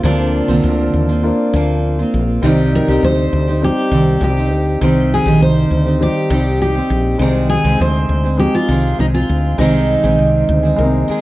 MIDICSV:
0, 0, Header, 1, 6, 480
1, 0, Start_track
1, 0, Tempo, 597015
1, 31, Time_signature, 4, 2, 24, 8
1, 9013, End_track
2, 0, Start_track
2, 0, Title_t, "Steel-string acoustic guitar"
2, 0, Program_c, 0, 25
2, 43, Note_on_c, 0, 62, 82
2, 1446, Note_off_c, 0, 62, 0
2, 2213, Note_on_c, 0, 70, 105
2, 2444, Note_off_c, 0, 70, 0
2, 2447, Note_on_c, 0, 72, 111
2, 2926, Note_off_c, 0, 72, 0
2, 2929, Note_on_c, 0, 67, 97
2, 3397, Note_off_c, 0, 67, 0
2, 3407, Note_on_c, 0, 67, 71
2, 3847, Note_off_c, 0, 67, 0
2, 4131, Note_on_c, 0, 68, 86
2, 4357, Note_off_c, 0, 68, 0
2, 4361, Note_on_c, 0, 72, 104
2, 4803, Note_off_c, 0, 72, 0
2, 4844, Note_on_c, 0, 67, 103
2, 5309, Note_off_c, 0, 67, 0
2, 5319, Note_on_c, 0, 67, 79
2, 5762, Note_off_c, 0, 67, 0
2, 6026, Note_on_c, 0, 68, 101
2, 6275, Note_off_c, 0, 68, 0
2, 6281, Note_on_c, 0, 72, 113
2, 6747, Note_off_c, 0, 72, 0
2, 6750, Note_on_c, 0, 67, 95
2, 6871, Note_on_c, 0, 65, 101
2, 6873, Note_off_c, 0, 67, 0
2, 7232, Note_off_c, 0, 65, 0
2, 7236, Note_on_c, 0, 63, 91
2, 7276, Note_off_c, 0, 63, 0
2, 7353, Note_on_c, 0, 65, 92
2, 7685, Note_off_c, 0, 65, 0
2, 7709, Note_on_c, 0, 63, 81
2, 9013, Note_off_c, 0, 63, 0
2, 9013, End_track
3, 0, Start_track
3, 0, Title_t, "Felt piano"
3, 0, Program_c, 1, 0
3, 0, Control_c, 1, 64, 127
3, 0, Note_on_c, 1, 58, 84
3, 0, Note_on_c, 1, 62, 71
3, 0, Note_on_c, 1, 65, 74
3, 0, Note_on_c, 1, 72, 87
3, 22, Note_off_c, 1, 58, 0
3, 22, Note_on_c, 1, 58, 77
3, 29, Note_off_c, 1, 62, 0
3, 29, Note_on_c, 1, 62, 67
3, 33, Note_off_c, 1, 65, 0
3, 33, Note_on_c, 1, 65, 76
3, 41, Note_off_c, 1, 72, 0
3, 41, Note_on_c, 1, 72, 76
3, 914, Note_off_c, 1, 58, 0
3, 917, Note_off_c, 1, 62, 0
3, 920, Note_off_c, 1, 65, 0
3, 923, Note_off_c, 1, 72, 0
3, 983, Note_on_c, 1, 58, 86
3, 990, Note_on_c, 1, 62, 93
3, 991, Note_on_c, 1, 65, 86
3, 1000, Note_on_c, 1, 72, 100
3, 1874, Note_off_c, 1, 58, 0
3, 1878, Note_off_c, 1, 62, 0
3, 1878, Note_off_c, 1, 65, 0
3, 1883, Note_off_c, 1, 72, 0
3, 1943, Note_on_c, 1, 55, 99
3, 1947, Note_on_c, 1, 60, 84
3, 1955, Note_on_c, 1, 63, 87
3, 1960, Note_on_c, 1, 72, 103
3, 1964, Control_c, 1, 64, 0
3, 2100, Control_c, 1, 64, 127
3, 2834, Note_off_c, 1, 55, 0
3, 2836, Note_off_c, 1, 60, 0
3, 2840, Note_off_c, 1, 63, 0
3, 2842, Note_off_c, 1, 72, 0
3, 2903, Note_on_c, 1, 55, 81
3, 2909, Note_on_c, 1, 60, 71
3, 2913, Note_on_c, 1, 63, 75
3, 2916, Note_on_c, 1, 72, 93
3, 3794, Note_off_c, 1, 55, 0
3, 3797, Note_off_c, 1, 60, 0
3, 3799, Note_off_c, 1, 63, 0
3, 3801, Note_off_c, 1, 72, 0
3, 3871, Note_on_c, 1, 60, 73
3, 3879, Note_on_c, 1, 63, 72
3, 3885, Note_on_c, 1, 72, 89
3, 4757, Note_off_c, 1, 60, 0
3, 4762, Note_off_c, 1, 63, 0
3, 4765, Note_off_c, 1, 72, 0
3, 4814, Note_on_c, 1, 55, 80
3, 4822, Note_on_c, 1, 60, 78
3, 4828, Note_on_c, 1, 63, 76
3, 4830, Note_on_c, 1, 72, 98
3, 5708, Note_off_c, 1, 55, 0
3, 5712, Note_off_c, 1, 60, 0
3, 5715, Note_off_c, 1, 63, 0
3, 5716, Note_off_c, 1, 72, 0
3, 5776, Note_on_c, 1, 56, 78
3, 5781, Note_on_c, 1, 60, 73
3, 5787, Note_on_c, 1, 63, 71
3, 5790, Note_on_c, 1, 72, 88
3, 5800, Control_c, 1, 64, 0
3, 5946, Control_c, 1, 64, 127
3, 6669, Note_off_c, 1, 56, 0
3, 6671, Note_off_c, 1, 60, 0
3, 6674, Note_off_c, 1, 63, 0
3, 6676, Note_off_c, 1, 72, 0
3, 6731, Note_on_c, 1, 56, 86
3, 6736, Note_on_c, 1, 60, 78
3, 6741, Note_on_c, 1, 63, 72
3, 6747, Note_on_c, 1, 68, 88
3, 7626, Note_off_c, 1, 56, 0
3, 7628, Note_off_c, 1, 60, 0
3, 7631, Note_off_c, 1, 63, 0
3, 7634, Note_off_c, 1, 68, 0
3, 7700, Note_on_c, 1, 56, 80
3, 7706, Note_on_c, 1, 60, 65
3, 7710, Note_on_c, 1, 63, 70
3, 7718, Note_on_c, 1, 72, 88
3, 8590, Note_off_c, 1, 56, 0
3, 8594, Note_off_c, 1, 60, 0
3, 8595, Note_off_c, 1, 63, 0
3, 8600, Note_off_c, 1, 72, 0
3, 8651, Note_on_c, 1, 56, 99
3, 8660, Note_on_c, 1, 58, 69
3, 8662, Note_on_c, 1, 63, 84
3, 8666, Note_on_c, 1, 70, 92
3, 8710, Note_on_c, 1, 60, 87
3, 8716, Note_off_c, 1, 58, 0
3, 9013, Note_off_c, 1, 56, 0
3, 9013, Note_off_c, 1, 60, 0
3, 9013, Note_off_c, 1, 63, 0
3, 9013, Note_off_c, 1, 70, 0
3, 9013, End_track
4, 0, Start_track
4, 0, Title_t, "Steel-string acoustic guitar"
4, 0, Program_c, 2, 25
4, 29, Note_on_c, 2, 50, 83
4, 35, Note_on_c, 2, 53, 84
4, 37, Note_on_c, 2, 58, 90
4, 42, Note_on_c, 2, 60, 97
4, 44, Note_on_c, 2, 65, 101
4, 378, Note_off_c, 2, 65, 0
4, 384, Note_off_c, 2, 60, 0
4, 388, Note_off_c, 2, 58, 0
4, 388, Note_on_c, 2, 65, 71
4, 390, Note_off_c, 2, 50, 0
4, 393, Note_off_c, 2, 53, 0
4, 394, Note_on_c, 2, 60, 70
4, 398, Note_on_c, 2, 58, 62
4, 402, Note_on_c, 2, 53, 66
4, 404, Note_on_c, 2, 50, 65
4, 868, Note_off_c, 2, 65, 0
4, 875, Note_off_c, 2, 58, 0
4, 877, Note_off_c, 2, 53, 0
4, 877, Note_on_c, 2, 65, 69
4, 878, Note_off_c, 2, 50, 0
4, 884, Note_off_c, 2, 60, 0
4, 887, Note_on_c, 2, 60, 56
4, 897, Note_on_c, 2, 58, 51
4, 1235, Note_off_c, 2, 65, 0
4, 1239, Note_off_c, 2, 60, 0
4, 1244, Note_off_c, 2, 58, 0
4, 1245, Note_on_c, 2, 53, 67
4, 1253, Note_on_c, 2, 58, 75
4, 1261, Note_on_c, 2, 60, 71
4, 1264, Note_on_c, 2, 65, 81
4, 1591, Note_off_c, 2, 65, 0
4, 1598, Note_off_c, 2, 53, 0
4, 1600, Note_on_c, 2, 65, 60
4, 1601, Note_off_c, 2, 60, 0
4, 1602, Note_off_c, 2, 58, 0
4, 1610, Note_on_c, 2, 60, 62
4, 1623, Note_on_c, 2, 58, 50
4, 1953, Note_off_c, 2, 60, 0
4, 1954, Note_on_c, 2, 48, 100
4, 1956, Note_off_c, 2, 65, 0
4, 1960, Note_off_c, 2, 58, 0
4, 1961, Note_on_c, 2, 51, 88
4, 1963, Note_on_c, 2, 60, 85
4, 1969, Note_on_c, 2, 63, 112
4, 1971, Note_on_c, 2, 67, 101
4, 2312, Note_off_c, 2, 67, 0
4, 2313, Note_off_c, 2, 48, 0
4, 2316, Note_off_c, 2, 51, 0
4, 2317, Note_off_c, 2, 60, 0
4, 2317, Note_off_c, 2, 63, 0
4, 2322, Note_on_c, 2, 67, 75
4, 2326, Note_on_c, 2, 63, 72
4, 2330, Note_on_c, 2, 60, 61
4, 2337, Note_on_c, 2, 48, 55
4, 2784, Note_off_c, 2, 67, 0
4, 2793, Note_on_c, 2, 67, 56
4, 2802, Note_off_c, 2, 63, 0
4, 2804, Note_off_c, 2, 48, 0
4, 2805, Note_on_c, 2, 63, 54
4, 2815, Note_off_c, 2, 60, 0
4, 2818, Note_on_c, 2, 60, 42
4, 3152, Note_off_c, 2, 67, 0
4, 3152, Note_on_c, 2, 51, 70
4, 3153, Note_off_c, 2, 60, 0
4, 3158, Note_off_c, 2, 63, 0
4, 3163, Note_on_c, 2, 60, 66
4, 3168, Note_on_c, 2, 63, 59
4, 3174, Note_on_c, 2, 67, 74
4, 3500, Note_off_c, 2, 67, 0
4, 3509, Note_on_c, 2, 67, 57
4, 3512, Note_off_c, 2, 51, 0
4, 3512, Note_off_c, 2, 63, 0
4, 3517, Note_off_c, 2, 60, 0
4, 3521, Note_on_c, 2, 63, 50
4, 3533, Note_on_c, 2, 60, 52
4, 3868, Note_on_c, 2, 48, 85
4, 3870, Note_off_c, 2, 60, 0
4, 3870, Note_off_c, 2, 63, 0
4, 3870, Note_off_c, 2, 67, 0
4, 3872, Note_on_c, 2, 51, 91
4, 3879, Note_on_c, 2, 63, 94
4, 3880, Note_on_c, 2, 60, 88
4, 3885, Note_on_c, 2, 67, 95
4, 4223, Note_off_c, 2, 63, 0
4, 4223, Note_off_c, 2, 67, 0
4, 4230, Note_off_c, 2, 48, 0
4, 4231, Note_off_c, 2, 60, 0
4, 4232, Note_off_c, 2, 51, 0
4, 4232, Note_on_c, 2, 63, 71
4, 4232, Note_on_c, 2, 67, 68
4, 4241, Note_on_c, 2, 60, 66
4, 4244, Note_on_c, 2, 51, 66
4, 4246, Note_on_c, 2, 48, 57
4, 4693, Note_off_c, 2, 67, 0
4, 4703, Note_on_c, 2, 67, 54
4, 4713, Note_off_c, 2, 63, 0
4, 4717, Note_on_c, 2, 63, 55
4, 4718, Note_off_c, 2, 48, 0
4, 4725, Note_off_c, 2, 60, 0
4, 4728, Note_on_c, 2, 60, 49
4, 5062, Note_off_c, 2, 51, 0
4, 5063, Note_off_c, 2, 60, 0
4, 5065, Note_on_c, 2, 51, 66
4, 5066, Note_off_c, 2, 63, 0
4, 5067, Note_off_c, 2, 67, 0
4, 5073, Note_on_c, 2, 60, 70
4, 5076, Note_on_c, 2, 63, 71
4, 5086, Note_on_c, 2, 67, 66
4, 5419, Note_off_c, 2, 67, 0
4, 5428, Note_off_c, 2, 51, 0
4, 5429, Note_on_c, 2, 67, 53
4, 5431, Note_off_c, 2, 60, 0
4, 5433, Note_off_c, 2, 63, 0
4, 5444, Note_on_c, 2, 63, 55
4, 5451, Note_on_c, 2, 60, 46
4, 5789, Note_off_c, 2, 67, 0
4, 5797, Note_off_c, 2, 63, 0
4, 5798, Note_on_c, 2, 48, 83
4, 5800, Note_off_c, 2, 60, 0
4, 5802, Note_on_c, 2, 51, 102
4, 5804, Note_on_c, 2, 56, 85
4, 5809, Note_on_c, 2, 60, 90
4, 5814, Note_on_c, 2, 68, 96
4, 6139, Note_off_c, 2, 68, 0
4, 6144, Note_off_c, 2, 60, 0
4, 6149, Note_on_c, 2, 68, 76
4, 6150, Note_off_c, 2, 56, 0
4, 6153, Note_off_c, 2, 48, 0
4, 6153, Note_on_c, 2, 60, 66
4, 6156, Note_off_c, 2, 51, 0
4, 6160, Note_on_c, 2, 56, 70
4, 6165, Note_on_c, 2, 48, 61
4, 6615, Note_off_c, 2, 68, 0
4, 6624, Note_on_c, 2, 68, 56
4, 6626, Note_off_c, 2, 60, 0
4, 6634, Note_off_c, 2, 56, 0
4, 6636, Note_on_c, 2, 60, 53
4, 6637, Note_off_c, 2, 48, 0
4, 6643, Note_on_c, 2, 56, 49
4, 6986, Note_off_c, 2, 56, 0
4, 6986, Note_off_c, 2, 68, 0
4, 6989, Note_on_c, 2, 51, 69
4, 6992, Note_off_c, 2, 60, 0
4, 6996, Note_on_c, 2, 56, 65
4, 7005, Note_on_c, 2, 60, 71
4, 7010, Note_on_c, 2, 68, 69
4, 7339, Note_off_c, 2, 68, 0
4, 7348, Note_off_c, 2, 51, 0
4, 7348, Note_off_c, 2, 60, 0
4, 7349, Note_on_c, 2, 68, 53
4, 7352, Note_off_c, 2, 56, 0
4, 7358, Note_on_c, 2, 60, 50
4, 7371, Note_on_c, 2, 56, 44
4, 7708, Note_off_c, 2, 68, 0
4, 7713, Note_off_c, 2, 60, 0
4, 7717, Note_off_c, 2, 56, 0
4, 7718, Note_on_c, 2, 48, 77
4, 7725, Note_on_c, 2, 51, 86
4, 7727, Note_on_c, 2, 56, 97
4, 7728, Note_on_c, 2, 60, 89
4, 7733, Note_on_c, 2, 68, 91
4, 8057, Note_off_c, 2, 68, 0
4, 8062, Note_off_c, 2, 60, 0
4, 8067, Note_off_c, 2, 56, 0
4, 8067, Note_on_c, 2, 68, 80
4, 8070, Note_off_c, 2, 51, 0
4, 8071, Note_off_c, 2, 48, 0
4, 8071, Note_on_c, 2, 60, 67
4, 8076, Note_on_c, 2, 56, 71
4, 8079, Note_on_c, 2, 51, 61
4, 8081, Note_on_c, 2, 48, 61
4, 8535, Note_off_c, 2, 68, 0
4, 8545, Note_on_c, 2, 68, 60
4, 8549, Note_off_c, 2, 60, 0
4, 8552, Note_off_c, 2, 56, 0
4, 8554, Note_off_c, 2, 48, 0
4, 8560, Note_on_c, 2, 60, 65
4, 8570, Note_on_c, 2, 56, 54
4, 8903, Note_off_c, 2, 51, 0
4, 8906, Note_off_c, 2, 56, 0
4, 8906, Note_off_c, 2, 68, 0
4, 8907, Note_on_c, 2, 51, 72
4, 8910, Note_off_c, 2, 60, 0
4, 8915, Note_on_c, 2, 56, 76
4, 8920, Note_on_c, 2, 60, 74
4, 8929, Note_on_c, 2, 68, 84
4, 9013, Note_off_c, 2, 51, 0
4, 9013, Note_off_c, 2, 56, 0
4, 9013, Note_off_c, 2, 60, 0
4, 9013, Note_off_c, 2, 68, 0
4, 9013, End_track
5, 0, Start_track
5, 0, Title_t, "Fretless electric bass"
5, 0, Program_c, 3, 35
5, 27, Note_on_c, 3, 38, 112
5, 324, Note_off_c, 3, 38, 0
5, 387, Note_on_c, 3, 36, 87
5, 487, Note_off_c, 3, 36, 0
5, 510, Note_on_c, 3, 38, 94
5, 708, Note_off_c, 3, 38, 0
5, 753, Note_on_c, 3, 39, 81
5, 1048, Note_off_c, 3, 39, 0
5, 1235, Note_on_c, 3, 38, 100
5, 1628, Note_off_c, 3, 38, 0
5, 1718, Note_on_c, 3, 34, 100
5, 1912, Note_off_c, 3, 34, 0
5, 1948, Note_on_c, 3, 36, 109
5, 2245, Note_off_c, 3, 36, 0
5, 2316, Note_on_c, 3, 36, 93
5, 2413, Note_off_c, 3, 36, 0
5, 2433, Note_on_c, 3, 38, 95
5, 2629, Note_off_c, 3, 38, 0
5, 2674, Note_on_c, 3, 38, 97
5, 2968, Note_off_c, 3, 38, 0
5, 3146, Note_on_c, 3, 36, 98
5, 3345, Note_off_c, 3, 36, 0
5, 3383, Note_on_c, 3, 36, 99
5, 3628, Note_off_c, 3, 36, 0
5, 3628, Note_on_c, 3, 38, 98
5, 3826, Note_off_c, 3, 38, 0
5, 3869, Note_on_c, 3, 36, 105
5, 4165, Note_off_c, 3, 36, 0
5, 4225, Note_on_c, 3, 34, 102
5, 4326, Note_off_c, 3, 34, 0
5, 4346, Note_on_c, 3, 36, 94
5, 4545, Note_off_c, 3, 36, 0
5, 4589, Note_on_c, 3, 38, 99
5, 4885, Note_off_c, 3, 38, 0
5, 5067, Note_on_c, 3, 36, 117
5, 5462, Note_off_c, 3, 36, 0
5, 5548, Note_on_c, 3, 34, 100
5, 5746, Note_off_c, 3, 34, 0
5, 5784, Note_on_c, 3, 36, 113
5, 6081, Note_off_c, 3, 36, 0
5, 6145, Note_on_c, 3, 36, 105
5, 6245, Note_off_c, 3, 36, 0
5, 6270, Note_on_c, 3, 38, 101
5, 6466, Note_off_c, 3, 38, 0
5, 6504, Note_on_c, 3, 38, 85
5, 6801, Note_off_c, 3, 38, 0
5, 6983, Note_on_c, 3, 36, 102
5, 7182, Note_off_c, 3, 36, 0
5, 7228, Note_on_c, 3, 36, 88
5, 7425, Note_off_c, 3, 36, 0
5, 7473, Note_on_c, 3, 38, 95
5, 7667, Note_off_c, 3, 38, 0
5, 7703, Note_on_c, 3, 36, 108
5, 8000, Note_off_c, 3, 36, 0
5, 8069, Note_on_c, 3, 34, 91
5, 8167, Note_off_c, 3, 34, 0
5, 8191, Note_on_c, 3, 36, 89
5, 8386, Note_off_c, 3, 36, 0
5, 8431, Note_on_c, 3, 38, 99
5, 8626, Note_off_c, 3, 38, 0
5, 8670, Note_on_c, 3, 36, 106
5, 8866, Note_off_c, 3, 36, 0
5, 9013, End_track
6, 0, Start_track
6, 0, Title_t, "Muted fretless electric bass strokes"
6, 8915, Note_on_c, 9, 29, 49
6, 8996, Note_off_c, 9, 29, 0
6, 9013, End_track
0, 0, End_of_file